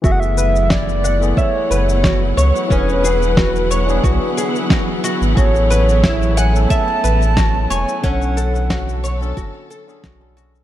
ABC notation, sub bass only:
X:1
M:4/4
L:1/16
Q:"Swing 16ths" 1/4=90
K:F#m
V:1 name="Sub bass" clef=bass
F,,,8 z2 F,,,4 C,, z | E,,,8 B,,, z6 G,,, | A,,,8 z2 A,,,4 E,,, z | B,,,8 F,,, z3 B,,,4 |]